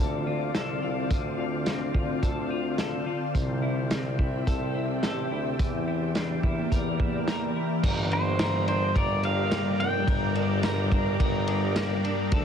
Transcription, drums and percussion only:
0.55 snare, closed hi-hat
1.11 kick, closed hi-hat
1.66 snare, closed hi-hat
1.95 kick
2.23 kick, closed hi-hat
2.78 snare, closed hi-hat
3.35 kick, closed hi-hat
3.91 snare, closed hi-hat
4.19 kick
4.47 kick, closed hi-hat
5.03 snare, closed hi-hat
5.59 kick, closed hi-hat
6.15 snare, closed hi-hat
6.43 kick
6.72 kick, closed hi-hat
7.00 kick
7.28 snare, closed hi-hat
7.83 kick, crash
8.11 ride
8.39 snare, ride, tambourine
8.68 ride
8.96 kick, ride
9.23 ride
9.51 snare, ride, tambourine
9.80 ride
10.08 kick, ride
10.35 ride
10.63 snare, ride, tambourine
10.92 kick, ride
11.20 kick, ride
11.47 ride
11.76 snare, ride, tambourine
12.04 ride
12.32 kick, ride

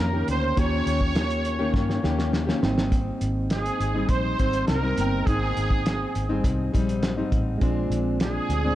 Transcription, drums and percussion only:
0.28 closed hi-hat
0.57 kick, closed hi-hat
0.87 closed hi-hat
1.01 kick
1.15 snare, closed hi-hat
1.30 closed hi-hat
1.45 closed hi-hat
1.74 kick, snare
1.90 snare
2.04 snare
2.19 snare
2.33 snare
2.49 snare
2.63 snare
2.78 snare
2.92 kick, closed hi-hat
3.21 closed hi-hat
3.50 snare, closed hi-hat
3.66 closed hi-hat
3.81 closed hi-hat
4.09 kick, closed hi-hat
4.39 kick, closed hi-hat
4.53 closed hi-hat
4.68 snare, closed hi-hat
4.98 closed hi-hat
5.27 kick, closed hi-hat
5.57 closed hi-hat
5.70 kick
5.86 snare, closed hi-hat
6.15 closed hi-hat
6.44 kick, closed hi-hat
6.74 kick, closed hi-hat
6.89 closed hi-hat
7.03 snare, closed hi-hat
7.32 kick, closed hi-hat
7.61 kick, closed hi-hat
7.92 closed hi-hat
8.20 snare, closed hi-hat
8.50 closed hi-hat

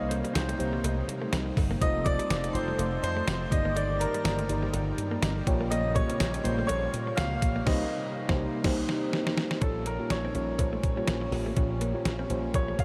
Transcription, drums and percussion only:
0.11 closed hi-hat, cowbell
0.25 closed hi-hat
0.35 snare, closed hi-hat, tambourine, cowbell
0.49 closed hi-hat
0.60 closed hi-hat
0.84 closed hi-hat, cowbell
1.09 closed hi-hat
1.33 snare, closed hi-hat, tambourine, cowbell
1.57 kick, open hi-hat, cowbell
1.82 kick, closed hi-hat, cowbell
2.06 kick, closed hi-hat, cowbell
2.19 closed hi-hat
2.30 snare, closed hi-hat, tambourine, cowbell
2.44 closed hi-hat
2.55 closed hi-hat
2.79 closed hi-hat, cowbell
3.04 closed hi-hat
3.27 snare, closed hi-hat, tambourine, cowbell
3.52 kick, closed hi-hat
3.76 closed hi-hat, cowbell
4.00 closed hi-hat, cowbell
4.14 closed hi-hat
4.25 snare, closed hi-hat, tambourine, cowbell
4.39 closed hi-hat
4.49 closed hi-hat
4.73 closed hi-hat, cowbell
4.98 closed hi-hat
5.22 snare, closed hi-hat, tambourine, cowbell
5.47 kick, closed hi-hat
5.71 closed hi-hat, cowbell
5.95 kick, closed hi-hat, cowbell
6.10 closed hi-hat
6.20 snare, closed hi-hat, tambourine, cowbell
6.34 closed hi-hat
6.45 closed hi-hat
6.68 closed hi-hat, cowbell
6.94 closed hi-hat
7.17 snare, closed hi-hat, tambourine, cowbell
7.42 kick, closed hi-hat
7.67 kick, snare, crash
8.29 kick, snare
8.64 kick, snare, crash
8.89 snare
9.13 snare
9.27 snare
9.38 snare
9.51 snare
9.61 kick, closed hi-hat, cowbell
9.86 closed hi-hat, cowbell
10.10 snare, closed hi-hat, cowbell
10.35 closed hi-hat
10.58 kick, closed hi-hat, cowbell
10.83 kick, closed hi-hat
11.08 snare, closed hi-hat, cowbell
11.32 open hi-hat, cowbell
11.57 kick, closed hi-hat, cowbell
11.81 closed hi-hat, cowbell
12.05 snare, closed hi-hat, cowbell
12.30 closed hi-hat
12.54 kick, closed hi-hat, cowbell
12.79 kick, closed hi-hat

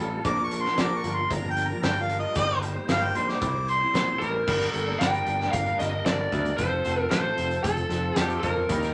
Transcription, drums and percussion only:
0.25 kick, closed hi-hat
0.51 closed hi-hat
0.65 snare
0.78 snare, closed hi-hat
1.04 closed hi-hat
1.30 kick, closed hi-hat
1.57 closed hi-hat
1.83 snare, closed hi-hat
2.09 closed hi-hat
2.35 kick, closed hi-hat
2.63 closed hi-hat
2.89 snare, closed hi-hat
3.15 closed hi-hat
3.28 snare
3.42 kick, closed hi-hat
3.68 closed hi-hat
3.95 snare, closed hi-hat
4.22 closed hi-hat
4.47 kick, crash
4.61 snare, closed hi-hat
4.74 closed hi-hat
5.01 snare, closed hi-hat
5.14 closed hi-hat
5.27 closed hi-hat
5.41 snare
5.53 kick, closed hi-hat
5.66 closed hi-hat
5.80 snare, closed hi-hat
6.06 snare, closed hi-hat
6.32 kick, closed hi-hat
6.45 closed hi-hat
6.58 kick, closed hi-hat
6.85 closed hi-hat
7.11 snare, closed hi-hat
7.38 closed hi-hat
7.51 closed hi-hat
7.64 kick, closed hi-hat
7.77 closed hi-hat
7.90 snare, closed hi-hat
8.16 snare, closed hi-hat
8.30 closed hi-hat
8.43 kick, closed hi-hat
8.69 kick, closed hi-hat
8.83 snare, closed hi-hat

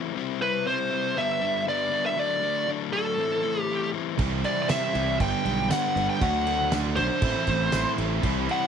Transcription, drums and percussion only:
4.19 kick, crash
4.44 crash
4.69 snare, tambourine, crash
4.95 crash
5.20 kick, crash
5.46 crash
5.70 snare, tambourine, crash
5.97 crash
6.21 kick, crash
6.47 crash
6.72 snare, tambourine, crash
6.97 crash
7.22 kick, crash
7.47 kick, crash
7.72 snare, tambourine, crash
7.98 crash
8.23 kick, crash
8.49 crash

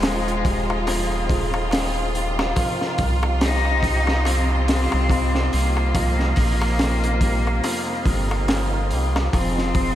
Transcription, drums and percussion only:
0.02 snare, open hi-hat, darbuka tek
0.28 closed hi-hat, darbuka tek
0.45 kick, open hi-hat
0.70 darbuka tek
0.87 open hi-hat, darbuka tek
1.11 darbuka tek
1.29 kick, open hi-hat
1.54 darbuka tek
1.71 snare, open hi-hat, darbuka tek
1.96 darbuka tek
2.15 open hi-hat
2.39 snare, darbuka tek
2.56 kick, open hi-hat, darbuka tek
2.81 snare, darbuka tek
2.98 kick, open hi-hat
3.23 darbuka tek
3.41 snare, open hi-hat, darbuka tek
3.65 darbuka tek
3.83 kick, open hi-hat
4.07 snare, darbuka tek
4.25 open hi-hat, darbuka tek
4.50 darbuka tek
4.68 snare, open hi-hat
4.92 darbuka tek
5.09 kick, open hi-hat, darbuka tek
5.35 snare, darbuka tek
5.53 open hi-hat
5.77 darbuka tek
5.95 kick, open hi-hat, darbuka tek
6.19 snare, darbuka tek
6.36 kick, open hi-hat
6.62 darbuka tek
6.79 snare, open hi-hat, darbuka tek
7.04 closed hi-hat, darbuka tek
7.21 kick, open hi-hat
7.47 darbuka tek
7.64 open hi-hat, darbuka tek
7.88 darbuka tek
8.06 kick, open hi-hat
8.31 darbuka tek
8.48 snare, open hi-hat, darbuka tek
8.73 darbuka tek
8.91 open hi-hat
9.16 snare, darbuka tek
9.33 kick, open hi-hat, darbuka tek
9.58 snare, darbuka tek
9.75 kick, open hi-hat

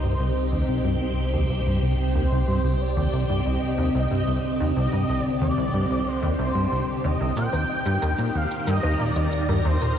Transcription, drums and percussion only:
7.37 shaker
7.53 low bongo, shaker
7.86 shaker
8.02 shaker
8.18 shaker
8.51 shaker
8.67 shaker
8.83 low bongo
9.16 shaker
9.32 shaker
9.81 shaker

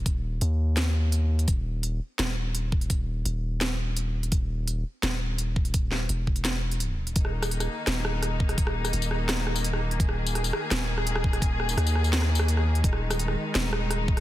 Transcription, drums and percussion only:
0.06 kick, closed hi-hat
0.41 closed hi-hat
0.77 snare, closed hi-hat
1.12 closed hi-hat
1.39 closed hi-hat
1.48 kick, closed hi-hat
1.83 closed hi-hat
2.19 snare, closed hi-hat
2.55 closed hi-hat
2.72 kick
2.81 closed hi-hat
2.90 kick, closed hi-hat
3.25 closed hi-hat
3.61 snare, closed hi-hat
3.97 closed hi-hat
4.23 closed hi-hat
4.32 kick, closed hi-hat
4.67 closed hi-hat
5.03 snare, closed hi-hat
5.38 closed hi-hat
5.56 kick
5.65 closed hi-hat
5.74 kick, closed hi-hat
5.91 snare
6.09 closed hi-hat
6.27 kick
6.36 closed hi-hat
6.45 snare, closed hi-hat
6.71 closed hi-hat
6.80 closed hi-hat
7.07 closed hi-hat
7.16 kick, closed hi-hat
7.25 cross-stick
7.43 cross-stick, tambourine
7.51 closed hi-hat
7.60 cross-stick, tambourine
7.87 cross-stick, snare, closed hi-hat
8.05 cross-stick
8.23 cross-stick, closed hi-hat
8.40 kick
8.49 cross-stick, closed hi-hat
8.58 kick, closed hi-hat
8.67 cross-stick
8.85 cross-stick, tambourine
8.93 closed hi-hat
9.02 tambourine
9.11 cross-stick
9.29 cross-stick, snare, closed hi-hat
9.47 cross-stick
9.56 tambourine
9.64 closed hi-hat
9.73 cross-stick
9.91 closed hi-hat
10.00 kick, closed hi-hat
10.09 cross-stick
10.27 tambourine
10.35 cross-stick, closed hi-hat
10.44 tambourine
10.53 cross-stick
10.71 cross-stick, snare, closed hi-hat
10.98 cross-stick
11.07 closed hi-hat
11.16 cross-stick
11.24 kick
11.33 cross-stick, closed hi-hat
11.42 kick, closed hi-hat
11.60 cross-stick
11.69 tambourine
11.78 cross-stick, closed hi-hat
11.87 tambourine
11.95 cross-stick
12.04 tambourine
12.13 snare, closed hi-hat
12.22 cross-stick
12.35 tambourine
12.39 cross-stick
12.48 closed hi-hat
12.57 cross-stick
12.75 closed hi-hat
12.84 kick, closed hi-hat
12.93 cross-stick
13.10 cross-stick, tambourine
13.19 closed hi-hat
13.28 cross-stick
13.55 cross-stick, snare, closed hi-hat
13.73 cross-stick
13.91 cross-stick, closed hi-hat
14.08 kick
14.17 cross-stick, closed hi-hat

